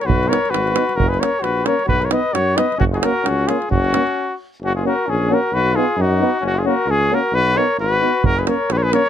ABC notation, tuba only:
X:1
M:2/4
L:1/8
Q:"Swing 16ths" 1/4=132
K:F#
V:1 name="Tuba" clef=bass
B,,,2 G,,,2 | F,,,2 A,,,2 | B,,,2 F,,2 | F,,,2 C,,2 |
F,,,2 z2 | F,,,2 A,,,2 | B,,,2 F,,2 | F,,,2 C,,2 |
B,,,2 G,,,2 | F,,,2 A,,,2 |]